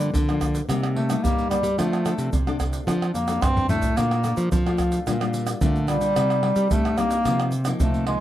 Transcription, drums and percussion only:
0.00 pandeiro medium
0.00 shaker medium
0.15 pandeiro medium
0.15 shaker medium
0.15 surdo loud
0.29 pandeiro soft
0.29 tamborim medium
0.29 shaker soft
0.41 pandeiro medium
0.41 tamborim medium
0.41 shaker medium
0.41 surdo medium
0.55 pandeiro medium
0.55 shaker medium
0.70 pandeiro medium
0.70 tamborim medium
0.70 shaker medium
0.70 surdo medium
0.83 pandeiro soft
0.83 tamborim medium
0.83 shaker soft
0.96 pandeiro medium
1.10 pandeiro medium
1.10 tamborim medium
1.10 shaker medium
1.25 pandeiro medium
1.25 shaker medium
1.25 surdo loud
1.38 pandeiro soft
1.38 shaker soft
1.51 pandeiro medium
1.51 tamborim medium
1.51 shaker medium
1.64 pandeiro medium
1.64 shaker medium
1.79 pandeiro medium
1.79 tamborim medium
1.79 shaker medium
1.79 surdo medium
1.93 pandeiro soft
1.93 tamborim medium
1.93 shaker soft
2.06 pandeiro medium
2.06 tamborim medium
2.06 shaker medium
2.18 pandeiro medium
2.18 shaker medium
2.33 pandeiro medium
2.33 shaker medium
2.33 surdo loud
2.47 pandeiro soft
2.47 tamborim medium
2.47 shaker soft
2.60 pandeiro medium
2.60 tamborim medium
2.60 shaker medium
2.60 surdo medium
2.73 pandeiro medium
2.73 shaker medium
2.88 pandeiro medium
2.88 tamborim medium
2.88 shaker medium
2.88 surdo medium
3.02 pandeiro soft
3.02 tamborim medium
3.02 shaker soft
3.15 pandeiro medium
3.15 shaker medium
3.28 pandeiro medium
3.28 tamborim medium
3.28 shaker medium
3.42 pandeiro medium
3.42 tamborim medium
3.42 shaker medium
3.42 surdo loud
3.57 surdo medium
3.57 pandeiro soft
3.57 shaker soft
3.69 surdo medium
3.69 pandeiro medium
3.69 shaker medium
3.82 pandeiro medium
3.82 shaker medium
3.82 surdo medium
3.97 pandeiro medium
3.97 tamborim medium
3.97 shaker medium
3.97 surdo medium
4.11 pandeiro soft
4.11 tamborim medium
4.11 shaker soft
4.24 pandeiro medium
4.24 tamborim medium
4.24 shaker medium
4.37 pandeiro medium
4.37 shaker medium
4.52 pandeiro medium
4.52 shaker medium
4.52 surdo loud
4.67 pandeiro soft
4.67 tamborim medium
4.67 shaker soft
4.78 pandeiro medium
4.78 tamborim medium
4.78 shaker medium
4.78 surdo medium
4.92 pandeiro medium
4.92 shaker medium
5.07 pandeiro medium
5.07 tamborim medium
5.07 shaker medium
5.07 surdo medium
5.21 pandeiro soft
5.21 tamborim medium
5.21 shaker soft
5.34 pandeiro medium
5.34 shaker medium
5.47 pandeiro medium
5.47 tamborim medium
5.47 shaker medium
5.61 pandeiro medium
5.61 shaker medium
5.61 surdo loud
5.76 pandeiro soft
5.76 shaker soft
5.88 pandeiro medium
5.88 tamborim medium
5.88 shaker medium
6.01 pandeiro medium
6.01 shaker medium
6.16 pandeiro medium
6.16 tamborim medium
6.16 shaker medium
6.16 surdo medium
6.30 pandeiro soft
6.30 tamborim medium
6.30 shaker soft
6.43 pandeiro medium
6.43 tamborim medium
6.56 pandeiro medium
6.56 shaker medium
6.71 pandeiro medium
6.71 shaker medium
6.71 surdo loud
6.85 pandeiro soft
6.85 tamborim medium
6.85 shaker soft
6.98 pandeiro medium
6.98 tamborim medium
6.98 shaker medium
7.11 pandeiro medium
7.11 shaker loud
7.25 pandeiro medium
7.25 tamborim medium
7.25 shaker medium
7.25 surdo medium
7.40 pandeiro soft
7.40 tamborim medium
7.40 shaker soft
7.52 pandeiro medium
7.52 shaker medium
7.65 pandeiro medium
7.65 tamborim medium
7.65 shaker medium
7.80 pandeiro medium
7.80 shaker medium
7.80 surdo loud
7.94 pandeiro soft
7.94 shaker soft
8.07 pandeiro medium
8.07 tamborim medium

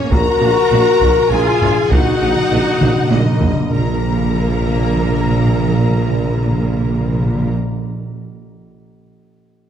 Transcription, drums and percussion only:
0.12 taiko loud
0.42 taiko rim soft
1.02 taiko medium
1.62 taiko low-mid medium
1.91 taiko loud
2.81 taiko mid medium
3.11 taiko high medium
3.41 taiko low loud

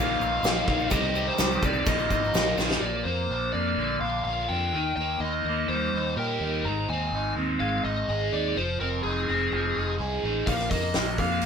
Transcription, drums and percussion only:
0.21 shaker medium
0.44 snare loud
0.44 crash medium
0.44 shaker loud
0.68 kick loud
0.79 shaker soft
0.90 kick loud
0.90 crash medium
0.90 shaker loud
1.15 shaker medium
1.38 snare loud
1.38 crash medium
1.38 shaker loud
1.51 shaker soft
1.62 kick loud
1.62 shaker medium
1.73 shaker soft
1.86 kick loud
1.86 crash medium
1.86 shaker loud
1.98 shaker soft
2.10 kick medium
2.10 shaker medium
2.24 shaker soft
2.34 snare loud
2.34 crash medium
2.34 shaker medium
2.58 snare medium
2.58 shaker medium
2.71 snare loud
10.47 kick medium
10.47 open hi-hat medium
10.59 snare soft
10.71 kick medium
10.71 open hi-hat medium
10.94 snare loud
10.94 open hi-hat medium
11.18 kick medium
11.18 open hi-hat medium
11.41 open hi-hat medium

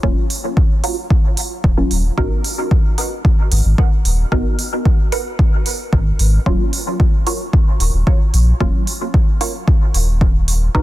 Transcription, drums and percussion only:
0.03 kick loud
0.30 open hi-hat medium
0.57 kick loud
0.84 open hi-hat medium
1.10 kick loud
1.37 open hi-hat medium
1.64 kick loud
1.91 open hi-hat medium
2.18 kick loud
2.44 open hi-hat medium
2.71 kick loud
2.98 open hi-hat medium
3.25 kick loud
3.52 open hi-hat medium
3.78 kick loud
4.05 open hi-hat medium
4.32 kick loud
4.59 open hi-hat medium
4.85 kick loud
5.12 open hi-hat medium
5.39 kick loud
5.66 open hi-hat medium
5.93 kick loud
6.19 open hi-hat medium
6.46 kick loud
6.73 open hi-hat medium
7.00 kick loud
7.27 open hi-hat medium
7.53 kick loud
7.80 open hi-hat medium
8.07 kick loud
8.34 open hi-hat medium
8.60 kick loud
8.87 open hi-hat medium
9.14 kick loud
9.41 open hi-hat medium
9.68 kick loud
9.94 open hi-hat medium
10.21 kick loud
10.48 open hi-hat medium
10.75 kick loud

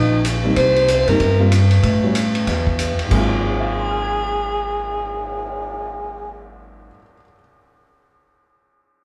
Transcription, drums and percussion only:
0.25 hi-hat pedal soft
0.25 ride medium
0.56 kick soft
0.56 ride medium
0.76 ride soft
0.88 hi-hat pedal medium
0.88 ride medium
1.08 ride soft
1.20 kick soft
1.20 ride soft
1.52 hi-hat pedal soft
1.52 ride medium
1.71 ride soft
1.83 kick soft
1.83 ride soft
2.15 hi-hat pedal soft
2.15 ride medium
2.35 ride soft
2.47 kick soft
2.47 snare soft
2.47 ride medium
2.67 kick soft
2.79 hi-hat pedal soft
2.79 ride medium
2.99 ride soft
3.11 kick soft
3.11 crash medium
3.31 cymbal swell soft

